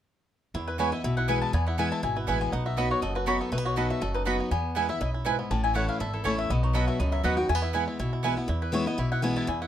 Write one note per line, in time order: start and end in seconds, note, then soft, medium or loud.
0.54 0.91 E2 medium
0.54 1.02 E2 medium
0.54 0.67 E4 medium
0.67 0.91 E4 medium
0.67 0.79 B4 medium
0.78 0.91 E3 medium
0.78 0.92 G#3 medium
0.78 0.88 B3 medium
0.78 1.42 B3 medium
0.78 0.92 B3 medium
0.78 0.88 E4 medium
0.78 0.91 E4 medium
0.78 0.89 B4 medium
0.78 0.92 C#5 medium
0.78 0.89 G#5 medium
0.92 1.04 B3 soft
0.92 1.03 E4 medium
0.92 1.03 D#5 medium
1.04 1.41 B1 medium
1.04 1.51 B2 medium
1.04 1.16 E4 medium
1.04 1.16 E5 medium
1.17 1.28 E4 medium
1.17 1.28 F#5 loud
1.28 1.52 E3 medium
1.28 1.53 G#3 medium
1.28 1.38 B3 medium
1.28 1.53 B3 medium
1.28 1.38 E4 medium
1.28 1.64 E4 medium
1.28 1.53 E4 medium
1.28 1.38 B4 loud
1.28 1.41 G#5 medium
1.28 1.38 G#5 loud
1.42 1.54 B3 medium
1.42 1.53 A5 loud
1.53 1.90 E2 medium
1.53 2.01 E2 medium
1.53 2.41 B3 medium
1.53 1.66 G#5 medium
1.67 1.78 E4 medium
1.67 1.78 F#5 medium
1.78 2.02 E3 medium
1.78 2.02 G#3 medium
1.78 1.88 B3 medium
1.78 2.02 B3 medium
1.78 1.88 E4 medium
1.78 1.91 E4 medium
1.78 2.03 E4 medium
1.78 1.88 B4 medium
1.78 1.91 G#5 medium
1.78 1.88 G#5 medium
1.92 2.02 E4 medium
1.92 2.03 A5 loud
2.03 2.24 G#1 medium
2.03 2.50 B2 medium
2.03 2.15 E4 medium
2.03 2.16 G#5 medium
2.16 2.27 E4 medium
2.16 2.28 B4 medium
2.27 2.49 A1 medium
2.27 2.51 E3 medium
2.27 2.52 G#3 medium
2.27 2.37 B3 medium
2.27 2.52 B3 medium
2.27 2.37 E4 medium
2.27 2.53 E4 medium
2.27 2.52 E4 medium
2.27 2.37 B4 medium
2.27 2.40 E5 medium
2.27 2.38 G#5 loud
2.41 2.78 B3 medium
2.41 2.52 G#5 loud
2.52 2.89 B1 medium
2.52 3.00 B2 medium
2.52 2.88 D#4 medium
2.52 2.65 F#5 medium
2.66 2.90 F#4 medium
2.66 2.77 E5 medium
2.77 3.01 F#3 medium
2.77 2.87 B3 medium
2.77 3.40 B3 medium
2.77 3.02 B3 medium
2.77 3.02 D#4 medium
2.77 2.87 F#4 medium
2.77 3.02 F#4 medium
2.77 2.90 D#5 medium
2.77 2.87 D#5 medium
2.77 2.87 B5 medium
2.91 3.15 F#4 medium
2.91 3.02 C#5 medium
3.02 3.39 F#1 medium
3.02 3.50 F#2 medium
3.02 3.38 A4 medium
3.02 3.15 D#5 medium
3.15 3.50 F#4 medium
3.15 3.27 B4 medium
3.26 3.50 F#3 medium
3.26 3.36 B3 medium
3.26 3.51 B3 medium
3.26 3.51 D#4 medium
3.26 3.63 D#4 medium
3.26 3.37 F#4 medium
3.26 3.51 F#4 medium
3.26 3.40 C#5 medium
3.26 3.37 D#5 medium
3.26 3.37 B5 loud
3.41 3.52 B3 medium
3.41 3.52 A4 medium
3.52 3.89 B1 medium
3.52 3.99 B2 medium
3.52 3.58 A3 medium
3.52 3.65 B4 medium
3.58 3.77 B3 medium
3.65 3.89 F#4 medium
3.65 3.77 C#5 medium
3.76 4.00 F#3 medium
3.76 3.86 B3 medium
3.76 4.00 B3 medium
3.76 4.01 D#4 medium
3.76 3.86 F#4 medium
3.76 4.01 F#4 medium
3.76 4.01 A4 medium
3.76 3.86 D#5 medium
3.76 3.90 D#5 medium
3.76 3.87 B5 medium
3.90 4.25 F#4 medium
3.90 4.01 E5 medium
4.01 4.39 F#1 medium
4.01 4.49 F#2 medium
4.01 4.37 A4 medium
4.01 4.14 D#5 medium
4.14 4.49 D#4 medium
4.14 4.22 B4 loud
4.25 4.50 F#3 medium
4.25 4.36 B3 medium
4.25 4.50 B3 medium
4.25 4.50 D#4 medium
4.25 4.36 F#4 medium
4.25 4.51 F#4 medium
4.25 4.50 F#4 medium
4.25 4.36 D#5 medium
4.25 4.36 B5 loud
4.40 4.50 B3 medium
4.51 4.88 E2 medium
4.51 4.99 E2 medium
4.51 4.87 B3 medium
4.51 4.87 G#5 medium
4.75 4.89 E3 medium
4.75 4.89 G#3 medium
4.75 4.85 B3 medium
4.75 4.89 B3 medium
4.75 4.85 E4 medium
4.75 4.88 E4 medium
4.75 4.86 B4 medium
4.75 4.86 G#5 medium
4.89 5.01 B3 soft
4.89 5.00 E4 medium
4.89 5.00 E5 medium
5.01 5.38 B1 medium
5.01 5.24 F#2 medium
5.01 5.13 E4 medium
5.01 5.09 D#5 medium
5.14 5.25 E4 medium
5.25 5.50 G#2 medium
5.25 5.35 B3 medium
5.25 5.35 E4 medium
5.25 5.51 E4 medium
5.25 5.35 B4 medium
5.25 5.35 G#5 medium
5.39 5.51 B3 medium
5.50 5.87 A1 loud
5.50 5.98 A2 medium
5.50 5.86 C#4 medium
5.50 5.63 A5 medium
5.63 5.88 E4 medium
5.63 5.75 G#5 loud
5.74 5.99 E3 medium
5.74 5.84 A3 medium
5.74 5.99 A3 medium
5.74 6.11 A3 medium
5.74 5.99 C#4 medium
5.74 5.85 E4 medium
5.74 6.00 E4 medium
5.74 5.85 C#5 medium
5.74 5.88 F#5 medium
5.74 5.85 A5 medium
5.89 6.13 E4 medium
5.89 6.00 F5 loud
6.00 6.21 G#1 medium
6.00 6.48 E2 medium
6.00 6.36 A4 medium
6.00 6.13 E5 medium
6.14 6.48 E4 medium
6.14 6.24 A4 medium
6.24 6.46 A1 medium
6.24 6.49 E3 medium
6.24 6.34 A3 medium
6.24 6.49 A3 medium
6.24 6.50 C#4 medium
6.24 6.49 C#4 medium
6.24 6.34 E4 medium
6.24 6.50 E4 medium
6.24 6.38 C#5 medium
6.24 6.35 C#5 medium
6.24 6.35 A5 loud
6.38 6.50 A3 medium
6.38 6.50 E5 loud
6.50 6.87 B1 medium
6.50 6.97 B2 medium
6.50 6.99 B3 medium
6.50 6.63 D#5 medium
6.63 6.97 D#4 medium
6.63 6.75 C#5 medium
6.73 6.98 F#3 medium
6.73 6.84 B3 medium
6.73 6.99 B3 medium
6.73 6.99 D#4 medium
6.73 6.84 F#4 medium
6.73 6.99 F#4 medium
6.73 7.10 A4 medium
6.73 6.84 D#5 medium
6.73 6.88 D#5 medium
6.73 6.84 B5 loud
6.88 7.22 F#4 medium
6.88 6.99 E5 loud
6.99 7.21 C#2 medium
6.99 7.47 F#2 medium
6.99 7.24 B3 medium
6.99 7.12 D#5 medium
7.12 7.47 F#3 medium
7.12 7.24 E5 loud
7.23 7.45 D#2 medium
7.23 7.37 F#3 medium
7.23 7.33 B3 medium
7.23 7.49 B3 medium
7.23 7.37 B3 medium
7.23 7.37 D#4 medium
7.23 7.34 F#4 medium
7.23 7.36 F#4 medium
7.23 7.34 D#5 medium
7.23 7.37 F#5 medium
7.23 7.34 B5 loud
7.37 7.49 D#4 soft
7.37 7.48 F#4 medium
7.37 7.49 F#4 medium
7.37 7.49 G5 medium
7.49 7.97 E2 medium
7.49 7.86 E2 medium
7.49 7.55 A3 medium
7.49 7.62 G#5 medium
7.55 7.74 B3 medium
7.62 7.73 E4 medium
7.62 7.69 E5 medium
7.73 7.98 E3 medium
7.73 7.98 G#3 medium
7.73 7.83 B3 medium
7.73 7.98 B3 medium
7.73 7.83 E4 medium
7.73 7.86 E4 medium
7.73 7.99 E4 medium
7.73 7.84 B4 medium
7.73 7.84 G#5 medium
7.88 7.99 E4 medium
7.99 8.36 B1 medium
7.99 8.47 B2 medium
7.99 8.12 E4 medium
8.13 8.23 E4 medium
8.23 8.36 E3 medium
8.23 8.37 G#3 medium
8.23 8.33 B3 medium
8.23 8.37 B3 medium
8.23 8.33 E4 medium
8.23 8.48 E4 medium
8.23 8.35 E4 medium
8.23 8.33 B4 loud
8.23 8.34 G#5 medium
8.37 8.49 B3 medium
8.37 8.49 B3 soft
8.37 8.48 E4 medium
8.48 8.96 E2 medium
8.48 8.86 E2 medium
8.48 8.61 E4 medium
8.62 8.73 E4 medium
8.62 8.73 B4 medium
8.72 8.85 E3 medium
8.72 8.86 G#3 medium
8.72 8.86 B3 loud
8.72 8.85 E4 loud
8.72 8.98 E4 medium
8.72 8.87 C#5 medium
8.86 9.23 B3 medium
8.86 8.98 B3 soft
8.86 8.98 E4 medium
8.86 8.98 D#5 loud
8.98 9.35 B1 medium
8.98 9.45 B2 medium
8.98 9.11 E4 medium
8.98 9.11 E5 medium
9.12 9.36 E4 medium
9.12 9.23 F#5 loud
9.22 9.46 E3 medium
9.22 9.47 G#3 medium
9.22 9.67 B3 medium
9.22 9.47 B3 medium
9.22 9.47 E4 medium
9.22 9.36 G#5 medium
9.36 9.47 E4 medium
9.36 9.48 A5 loud
9.47 9.67 E2 medium
9.47 9.61 E4 medium
9.47 9.61 G#5 medium
9.62 9.67 E4 medium
9.62 9.67 F#5 medium